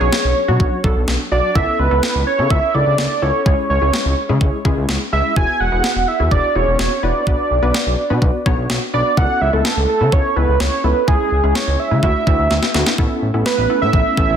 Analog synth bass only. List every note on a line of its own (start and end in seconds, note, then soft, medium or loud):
0.01 0.10 B1 loud
0.24 0.34 B1 medium
0.48 0.57 B2 medium
0.60 0.69 B1 loud
0.84 0.93 B1 loud
0.96 1.05 B1 medium
1.08 1.17 B1 loud
1.32 1.41 B1 loud
1.55 1.65 C#2 loud
1.79 1.88 C#2 loud
1.91 2.00 C#2 medium
2.15 2.24 C#2 medium
2.39 2.48 C#3 medium
2.50 2.60 C#2 loud
2.74 2.84 C#2 loud
2.86 2.95 C#2 loud
2.98 3.07 C#2 loud
3.22 3.31 C#2 loud
3.46 3.55 C#2 loud
3.70 3.79 C#2 loud
3.82 3.91 C#2 loud
4.05 4.14 C#2 loud
4.29 4.38 C#3 medium
4.41 4.50 C#2 loud
4.65 4.74 C#2 loud
4.77 4.86 C#2 loud
4.89 4.98 C#2 medium
5.13 5.22 C#2 loud
5.36 5.45 E1 loud
5.60 5.69 E1 loud
5.72 5.81 E1 medium
5.96 6.05 E1 medium
6.20 6.29 E2 loud
6.31 6.41 E1 loud
6.55 6.65 E1 loud
6.67 6.76 E1 loud
6.79 6.88 E1 loud
7.03 7.12 E1 loud
7.27 7.36 B1 loud
7.51 7.60 B1 loud
7.63 7.72 B1 loud
7.86 7.95 B1 medium
8.10 8.19 B2 medium
8.22 8.31 B1 loud
8.46 8.55 B1 loud
8.58 8.67 B1 medium
8.70 8.79 B1 loud
8.94 9.03 B1 loud
9.17 9.26 C#2 loud
9.41 9.50 C#2 loud
9.53 9.62 C#2 loud
9.77 9.86 C#2 medium
10.01 10.10 C#3 medium
10.12 10.21 C#2 loud
10.36 10.45 C#2 loud
10.48 10.57 C#2 medium
10.60 10.69 C#2 loud
10.84 10.93 C#2 loud
11.08 11.17 C#2 loud
11.32 11.41 C#2 loud
11.44 11.53 C#2 loud
11.67 11.76 C#2 loud
11.91 12.00 C#3 loud
12.03 12.12 D2 loud
12.27 12.36 D2 medium
12.39 12.48 D2 loud
12.51 12.60 D2 medium
12.74 12.84 D2 loud
12.98 13.07 A1 loud
13.22 13.31 A1 loud
13.34 13.43 A1 loud
13.58 13.67 A1 loud
13.82 13.91 A2 medium
13.93 14.02 A1 loud
14.17 14.26 A1 loud
14.29 14.37 A1 loud